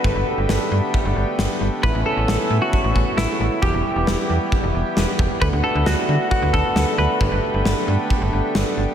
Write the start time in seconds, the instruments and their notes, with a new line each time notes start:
Already playing: harmonium A3 B3, clean electric guitar B4
0.04 fm bass G1, harmonium D3 G4, kick
0.15 fm bass G1
0.38 fm bass G1
0.49 fm bass G1, snare
0.71 fm bass G2
0.94 kick
1.05 fm bass G1
1.16 fm bass G1
1.39 fm bass G1, snare
1.61 fm bass G1
1.83 fm bass A1, harmonium C#3 E4, clean electric guitar B4, kick
1.95 fm bass A1
2.06 clean electric guitar A4
2.17 fm bass A1
2.28 fm bass A1, snare
2.50 fm bass A2
2.62 clean electric guitar F#4
2.73 kick
2.84 fm bass A1
2.96 fm bass A1, kick
3.17 fm bass A1, clean electric guitar E4, snare
3.40 fm bass A1
3.62 fm bass E1, harmonium E3 G3 G4, clean electric guitar G4, kick
3.74 fm bass E1
3.96 fm bass E1
4.07 fm bass E1, snare
4.30 fm bass E2
4.52 kick
4.63 fm bass E1
4.75 fm bass E1
4.97 fm bass E1, snare
5.19 fm bass E1, kick
5.41 fm bass D2, harmonium D3 A3 B3 F#4, clean electric guitar B4, kick
5.53 fm bass D2
5.64 clean electric guitar A4
5.75 fm bass D2
5.86 fm bass D2, clean electric guitar F#4, snare
6.09 fm bass D3
6.31 clean electric guitar F#4, kick
6.42 fm bass D2
6.53 fm bass D2, clean electric guitar A4, kick
6.76 fm bass D2, snare
6.98 fm bass D2, clean electric guitar B4
7.21 fm bass G1, harmonium G4, kick
7.32 fm bass G1
7.54 fm bass G1
7.65 fm bass G1, snare
7.88 fm bass G2
8.10 kick
8.21 fm bass G1
8.33 fm bass G1
8.55 fm bass G1, snare
8.77 fm bass G1